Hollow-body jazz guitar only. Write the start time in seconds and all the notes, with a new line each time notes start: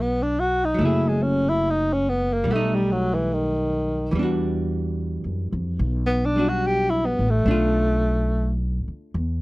Already playing: G3 B3 F#4 A4
0.74 F#3
0.79 A3 E4
0.85 G#4
2.44 G3
2.51 A3
2.56 D#4
4.11 E3
4.15 G3 D4
4.23 F#4
6.36 G3 D4 F#4
7.46 A3 D4
7.51 F4